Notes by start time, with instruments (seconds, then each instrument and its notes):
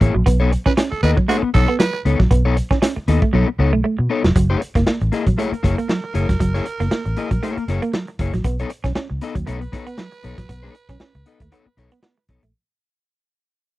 0.01 fingered electric bass A1, clean electric guitar A#3 E4 G#4 C#5, kick, closed hi-hat
0.14 fingered electric bass A#1, clean electric guitar F#3
0.26 fingered electric bass B1, clean electric guitar B3, muted clean electric guitar stroke, kick, closed hi-hat
0.40 clean electric guitar B3 D#4 A4 C#5
0.52 muted clean electric guitar stroke, closed hi-hat
0.66 clean electric guitar C#4, tenor saxophone B4, muted clean electric guitar stroke, kick, snare
0.77 clean electric guitar C#4, muted clean electric guitar stroke, snare, closed hi-hat
0.91 tenor saxophone A4, muted clean electric guitar stroke, muted fingered electric bass stroke
1.03 fingered electric bass D#2, clean electric guitar B3 D#4 A4 D#5, tenor saxophone B4, snare, closed hi-hat
1.17 clean electric guitar F#3, muted clean electric guitar stroke, kick
1.28 clean electric guitar A3 B3 D#4 A4 C#5, tenor saxophone F#4, closed hi-hat
1.43 muted fingered electric bass stroke, muted clean electric guitar stroke
1.54 fingered electric bass B1, clean electric guitar B3 D#4 A4 C#5, tenor saxophone A4, kick, snare, closed hi-hat
1.68 clean electric guitar B3, muted clean electric guitar stroke
1.79 clean electric guitar F#3, tenor saxophone B4, muted clean electric guitar stroke, snare, closed hi-hat
1.93 muted clean electric guitar stroke
2.05 fingered electric bass C#2, clean electric guitar B3 D#4 A4 C#5, closed hi-hat
2.19 fingered electric bass A#1, clean electric guitar F#3, muted clean electric guitar stroke, kick, snare
2.31 fingered electric bass B1, clean electric guitar B3, muted clean electric guitar stroke, kick, closed hi-hat
2.45 clean electric guitar B3 D#4 A4 C#5
2.57 muted clean electric guitar stroke, closed hi-hat
2.71 clean electric guitar C#4, muted clean electric guitar stroke, kick, snare
2.82 clean electric guitar C#4, muted clean electric guitar stroke, snare, closed hi-hat
2.96 muted clean electric guitar stroke, muted fingered electric bass stroke
3.08 fingered electric bass D#2, clean electric guitar B3 D#4 A4 D#5, snare, closed hi-hat
3.22 clean electric guitar A3, muted clean electric guitar stroke, kick
3.33 fingered electric bass B1, clean electric guitar F#3 B3 D#4 A4 C#5
3.48 muted clean electric guitar stroke
3.59 fingered electric bass C#2, clean electric guitar B3 D#4 A4 C#5
3.73 fingered electric bass B1, clean electric guitar A3, muted clean electric guitar stroke
3.84 clean electric guitar A3, muted clean electric guitar stroke
3.99 fingered electric bass B2, muted clean electric guitar stroke
4.10 clean electric guitar B3 D#4 A4 C#5
4.24 fingered electric bass F1, clean electric guitar F#3, muted clean electric guitar stroke, snare
4.36 fingered electric bass F#1, clean electric guitar F#3, muted clean electric guitar stroke, kick, closed hi-hat
4.50 clean electric guitar A#3 E4 G#4 C#5
4.61 muted clean electric guitar stroke, closed hi-hat
4.75 fingered electric bass F#1, clean electric guitar A#3, muted clean electric guitar stroke, kick, snare, closed hi-hat
4.86 clean electric guitar A#3, muted clean electric guitar stroke, snare
5.01 fingered electric bass A1, muted clean electric guitar stroke, closed hi-hat
5.12 clean electric guitar A#3 E4 G#4 D#5, snare, closed hi-hat
5.27 fingered electric bass A#1, clean electric guitar F#3, muted clean electric guitar stroke, kick, closed hi-hat
5.37 clean electric guitar A3 A#3 E4 G#4 C#5, tenor saxophone A#4, closed hi-hat
5.52 muted fingered electric bass stroke, muted clean electric guitar stroke, closed hi-hat
5.63 fingered electric bass F#1, clean electric guitar A#3 E4 G#4 C#5, kick, snare, closed hi-hat
5.77 clean electric guitar A#3, muted clean electric guitar stroke, closed hi-hat
5.88 clean electric guitar F#3, muted clean electric guitar stroke, snare
6.04 muted clean electric guitar stroke
6.14 fingered electric bass F#1, clean electric guitar A#3 E4 G#4 C#5, closed hi-hat
6.29 fingered electric bass F1, clean electric guitar F#3, muted clean electric guitar stroke, kick, snare, closed hi-hat
6.39 fingered electric bass F#1, clean electric guitar F#3, muted clean electric guitar stroke, kick, closed hi-hat
6.54 clean electric guitar A#3 E4 G#4 C#5, snare, closed hi-hat
6.66 muted clean electric guitar stroke, closed hi-hat
6.80 fingered electric bass F#1, clean electric guitar A#3, muted clean electric guitar stroke, snare, closed hi-hat
6.91 clean electric guitar A#3, muted clean electric guitar stroke, muted fingered electric bass stroke, snare
7.05 fingered electric bass A1, muted clean electric guitar stroke, closed hi-hat
7.17 clean electric guitar A#3 E4 G#4 D#5, closed hi-hat
7.31 fingered electric bass A#1, clean electric guitar F#3, muted clean electric guitar stroke, kick, closed hi-hat
7.43 clean electric guitar A3 A#3 E4 G#4 C#5, closed hi-hat
7.57 muted fingered electric bass stroke, muted clean electric guitar stroke, closed hi-hat
7.68 fingered electric bass F#1, clean electric guitar A#3 E4 G#4 C#5, snare, closed hi-hat
7.82 clean electric guitar A#3, muted clean electric guitar stroke, closed hi-hat
7.93 clean electric guitar F#3, muted clean electric guitar stroke, snare
8.07 muted clean electric guitar stroke, closed hi-hat
8.19 fingered electric bass F#1, clean electric guitar A#3 E4 G#4 C#5, kick, closed hi-hat
8.33 fingered electric bass A#1, clean electric guitar F#3, snare, closed hi-hat
8.44 fingered electric bass B1, clean electric guitar B3, muted clean electric guitar stroke, kick, closed hi-hat
8.59 clean electric guitar B3 D#4 A4 C#5, closed hi-hat
8.70 muted clean electric guitar stroke, closed hi-hat
8.84 fingered electric bass B1, clean electric guitar C#4, muted clean electric guitar stroke, kick, snare, closed hi-hat
8.95 clean electric guitar C#4, muted clean electric guitar stroke, snare
9.10 fingered electric bass C#2, muted clean electric guitar stroke
9.21 clean electric guitar B3 D#4 A4 D#5, snare, closed hi-hat
9.35 fingered electric bass D#2, clean electric guitar F#3, kick, closed hi-hat
9.46 fingered electric bass B1, clean electric guitar A3 B3 D#4 A4 C#5, tenor saxophone B4, closed hi-hat
9.60 muted clean electric guitar stroke, closed hi-hat
9.72 clean electric guitar B3 D#4 A4 C#5, kick, snare, closed hi-hat
9.86 clean electric guitar B3, muted clean electric guitar stroke, closed hi-hat
9.98 clean electric guitar F#3, muted clean electric guitar stroke, snare
10.12 muted clean electric guitar stroke, closed hi-hat
10.23 fingered electric bass B1, clean electric guitar B3 D#4 A4 C#5, closed hi-hat
10.38 fingered electric bass A#1, clean electric guitar F#3, muted clean electric guitar stroke, kick, snare, closed hi-hat
10.49 fingered electric bass B1, clean electric guitar B3, muted clean electric guitar stroke, kick, closed hi-hat
10.63 clean electric guitar B3 D#4 A4 C#5
10.75 muted clean electric guitar stroke, closed hi-hat
10.89 fingered electric bass B1, clean electric guitar C#4, muted clean electric guitar stroke, kick, snare, closed hi-hat
11.00 clean electric guitar C#4, muted fingered electric bass stroke, muted clean electric guitar stroke, snare
11.15 fingered electric bass C#2, muted clean electric guitar stroke, closed hi-hat
11.26 clean electric guitar B3 D#4 A4 D#5, closed hi-hat
11.40 fingered electric bass D#2, clean electric guitar A3, muted clean electric guitar stroke, kick, closed hi-hat
11.52 clean electric guitar B3 D#4 A4 C#5, closed hi-hat
11.66 muted fingered electric bass stroke, muted clean electric guitar stroke
11.77 fingered electric bass B1, clean electric guitar B3 D#4 A4 C#5, snare, closed hi-hat
11.91 clean electric guitar B3, muted clean electric guitar stroke, closed hi-hat
12.03 clean electric guitar B3, muted clean electric guitar stroke, snare
12.18 muted clean electric guitar stroke
12.28 fingered electric bass B1, clean electric guitar B3 D#4 A4 C#5, kick, closed hi-hat
12.43 fingered electric bass A#1, clean electric guitar A3, muted clean electric guitar stroke, closed hi-hat